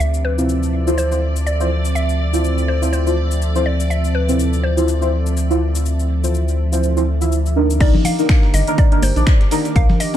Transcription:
0.00 analog synth bass D2, analog synth pad F3 C4 A4 E5, string machine D5, synth pluck E5, shaker
0.14 shaker
0.25 synth pluck B4
0.38 synth stab C4 E4 F4, shaker
0.49 shaker
0.63 shaker
0.87 synth stab E4 F4 C5, shaker
0.98 synth pluck C5, shaker
1.11 synth stab E4 F4 C5, shaker
1.36 shaker
1.47 synth pluck D5, shaker
1.60 synth stab E4 F4 C5, shaker
1.85 shaker
1.95 synth pluck E5, shaker
2.09 shaker
2.33 synth stab E4 F4 C5, shaker
2.44 shaker
2.58 shaker
2.68 synth pluck C5
2.82 synth stab E4 F4 C5, shaker
2.93 synth pluck C5, shaker
3.06 synth stab E4 F4 C5, shaker
3.31 shaker
3.42 shaker
3.55 synth stab E4 F4 C5, shaker
3.66 synth pluck D5
3.80 shaker
3.90 synth pluck E5, shaker
4.04 shaker
4.15 synth pluck B4
4.28 synth stab C4 E4 F4, shaker
4.39 shaker
4.53 shaker
4.63 synth pluck C5
4.77 synth stab E4 F4 C5, shaker
4.88 shaker
5.01 synth stab E4 F4 C5, shaker
5.26 shaker
5.37 shaker
5.50 synth stab E4 F4 C5, shaker
5.75 shaker
5.86 shaker
6.00 shaker
6.23 synth stab E4 F4 C5, shaker
6.34 shaker
6.48 shaker
6.72 synth stab E4 F4 C5, shaker
6.83 shaker
6.96 synth stab E4 F4 C5, shaker
7.21 synth stab E4 F4 E5, shaker
7.32 shaker
7.46 shaker
7.56 synth stab D4 D#4 A#4
7.70 shaker
7.80 analog synth bass C2, analog synth pad D#3 G4 A#4 D6, synth stab D4 D#4 A#4, synth pluck D5, kick, closed hi-hat, crash, shaker
7.94 snare, low conga
8.05 synth pluck F5, closed hi-hat, open hi-hat, low conga, shaker
8.18 synth stab D4 D#4 A#4, closed hi-hat, shaker
8.29 finger snap, kick, snare, closed hi-hat, open hi-hat, shaker
8.43 snare
8.54 analog synth bass G1, synth pluck D#5, snare, closed hi-hat, open hi-hat, shaker
8.67 synth stab D4 D#4 A#4, closed hi-hat, shaker
8.78 synth pluck D5, kick, closed hi-hat, shaker
8.92 synth stab D4 D#4 A#4, closed hi-hat
9.02 analog synth bass G1, synth pluck C5, closed hi-hat, open hi-hat, high conga, shaker
9.16 analog synth bass A#1, synth stab D4 D#4 D5, closed hi-hat, shaker
9.27 finger snap, kick, snare, closed hi-hat, shaker
9.41 snare, closed hi-hat
9.51 synth stab D4 D#4 A#4, snare, closed hi-hat, open hi-hat, shaker
9.65 snare, closed hi-hat, shaker
9.76 analog synth bass C2, synth pluck F5, kick, closed hi-hat, shaker
9.89 snare, low conga
10.00 synth pluck D#5, snare, closed hi-hat, open hi-hat, shaker
10.14 synth stab C4 D#4, snare

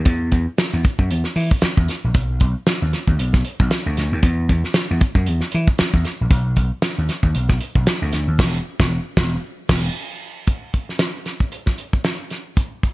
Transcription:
0.05 slap bass E2, kick, closed hi-hat
0.32 slap bass E2, kick, closed hi-hat
0.58 snare, closed hi-hat
0.73 slap bass E2
0.84 kick, closed hi-hat
0.99 slap bass F#2, kick
1.11 slap bass E2, closed hi-hat
1.24 snare
1.36 slap bass E3, open hi-hat
1.51 kick
1.62 muted slap bass stroke, snare, closed hi-hat
1.77 slap bass E2, kick
1.88 snare, closed hi-hat
2.04 slap bass A#1
2.14 slap bass B1, kick, closed hi-hat
2.40 slap bass B1, kick, closed hi-hat
2.67 snare, closed hi-hat
2.82 slap bass D#2
2.93 snare, closed hi-hat
3.07 slap bass D#2, kick
3.19 slap bass B1, closed hi-hat
3.33 kick, snare
3.45 closed hi-hat
3.60 slap bass B1, kick
3.71 snare, closed hi-hat
3.86 slap bass D2
3.97 slap bass D2, snare, closed hi-hat
4.12 slap bass D#2
4.23 slap bass E2, kick, closed hi-hat
4.49 slap bass E2, kick, closed hi-hat
4.64 snare
4.74 snare, closed hi-hat
4.91 slap bass E2
5.01 kick, closed hi-hat
5.15 slap bass F#2, kick
5.26 slap bass E2, closed hi-hat
5.41 snare
5.52 slap bass E3, closed hi-hat
5.68 kick
5.79 muted slap bass stroke, snare, closed hi-hat
5.94 slap bass E2, kick
6.04 snare, closed hi-hat
6.21 slap bass A#1
6.30 slap bass B1, kick, closed hi-hat
6.56 slap bass B1, kick, closed hi-hat
6.82 snare, closed hi-hat
6.98 slap bass D#2
7.09 snare, closed hi-hat
7.23 slap bass D#2, kick
7.35 slap bass B1, closed hi-hat
7.49 kick, snare
7.61 closed hi-hat
7.75 slap bass B1, kick
7.87 snare, closed hi-hat
8.02 slap bass D2
8.12 slap bass D2, snare, closed hi-hat
8.28 slap bass D#2
8.39 slap bass E1, kick, snare, crash
8.80 slap bass E1, kick, snare
9.17 slap bass E1, kick, snare
9.69 slap bass E1, kick, snare, crash
10.47 kick, closed hi-hat
10.74 kick, closed hi-hat
10.89 snare
10.99 snare, closed hi-hat
11.26 snare, closed hi-hat
11.40 kick
11.52 closed hi-hat
11.66 kick, snare
11.78 closed hi-hat
11.93 kick
12.04 snare, closed hi-hat
12.30 snare, closed hi-hat
12.57 kick, closed hi-hat
12.83 kick, closed hi-hat

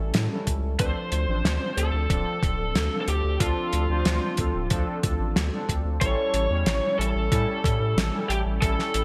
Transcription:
Already playing: analog polysynth G3 C#4 E4 A4
0.00 analog synth bass A1
0.14 analog synth bass A2, snare, closed hi-hat
0.31 analog polysynth G3 C#4 E4 A4
0.47 analog synth bass C#2, kick, closed hi-hat
0.63 analog synth bass C#2
0.79 analog synth bass D2, analog polysynth F3 C4 D4 A4, lead electric guitar C5, kick, closed hi-hat
1.12 analog synth bass D2, closed hi-hat
1.28 analog synth bass A1, analog polysynth F3 C4 D4 C5
1.45 analog synth bass D2, snare, closed hi-hat
1.77 analog synth bass D2, analog polysynth F3 C4 D4 A4, lead electric guitar A4, closed hi-hat
1.94 analog synth bass D2
2.10 analog synth bass D1, analog polysynth F3 C4 D4 A4, kick, closed hi-hat
2.43 analog synth bass D1, analog polysynth F3 C4 D4 A4, kick, closed hi-hat
2.59 analog synth bass D1
2.75 analog synth bass D2, snare, closed hi-hat
2.92 analog polysynth F3 C4 D4 A4
3.01 lead electric guitar A4
3.08 analog synth bass D2, lead electric guitar G4, closed hi-hat
3.24 analog synth bass D2
3.40 analog synth bass D2, analog polysynth F3 C4 D4 A4, lead electric guitar F4, kick, closed hi-hat
3.73 analog synth bass D2, closed hi-hat
3.90 analog synth bass D2, analog polysynth F3 C4 D4 C5
4.05 analog synth bass D2, snare, closed hi-hat
4.37 analog synth bass D2, analog polysynth F3 C4 D4 A4, kick, closed hi-hat
4.55 analog synth bass D1
4.70 analog synth bass D2, analog polysynth F3 C4 D4 A4, kick, closed hi-hat
5.03 analog synth bass D2, analog polysynth F3 C4 D4 A4, kick, closed hi-hat
5.20 analog synth bass A1
5.36 analog synth bass D2, snare, closed hi-hat
5.52 analog polysynth F3 C4 D4 A4
5.69 analog synth bass D2, kick, closed hi-hat
5.85 analog synth bass D2
6.01 analog synth bass A1, analog polysynth G3 C#4 E4 A4, lead electric guitar C#5, kick, closed hi-hat
6.34 analog synth bass A1, closed hi-hat
6.50 analog synth bass E2, analog polysynth G3 C#4 E4 C#5
6.66 analog synth bass A1, snare, closed hi-hat
6.99 analog synth bass A1, analog polysynth G3 C#4 E4 A4, lead electric guitar A4, closed hi-hat
7.15 analog synth bass A1
7.32 analog synth bass A2, analog polysynth G3 C#4 E4 A4, kick, closed hi-hat
7.64 analog synth bass A2, analog polysynth G3 C#4 E4 A4, kick, closed hi-hat
7.81 analog synth bass A2
7.97 analog synth bass A1, snare, closed hi-hat
8.13 analog polysynth G3 C#4 E4 A4
8.29 analog synth bass A1, lead electric guitar G4, closed hi-hat
8.46 analog synth bass A1
8.62 analog synth bass A1, analog polysynth G3 C#4 E4 A4, lead electric guitar A4, kick, closed hi-hat
8.79 snare
8.94 analog synth bass A1, closed hi-hat

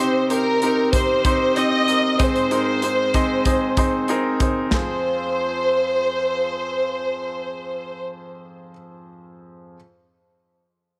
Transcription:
Already playing: grand piano C3, french horn section C3 C4 D#4 G4, violin section C5
0.00 grand piano C4 D#4 G4 C5
0.30 grand piano C4 D#4 G4 C5, violin section A#4, closed hi-hat
0.62 grand piano C4 D#4 G4 A#4, closed hi-hat
0.93 grand piano C4 D#4 G4 C5, violin section C5, kick, closed hi-hat
1.25 grand piano C4 D#4 G4 C5, kick, closed hi-hat
1.56 grand piano C4 D#4 G4 D#5, violin section D#5, closed hi-hat
1.88 grand piano C4 D#4 G4 A#4, closed hi-hat
2.18 grand piano G#2 C4 D#4 G#4 C5, french horn section G#3, violin section C5, kick, closed hi-hat
2.36 closed hi-hat
2.51 grand piano C4 D#4 G#4 A#4, closed hi-hat
2.82 grand piano C4 D#4 G#4 C5, closed hi-hat
3.14 grand piano C4 D#4 G#4 D#5, kick, closed hi-hat
3.45 grand piano C4 D#4 G#4 C5, kick, closed hi-hat
3.77 grand piano C4 D#4 G#4 C5, kick, closed hi-hat
4.08 grand piano C4 D#4 G#4 A#4, closed hi-hat
4.40 grand piano C4 D#4 G#4 C5, kick, closed hi-hat
4.70 grand piano F2 C4 F4 G#4, french horn section F3 F4 G#4 C5, violin section C5, kick, snare, splash
4.74 grand piano C5

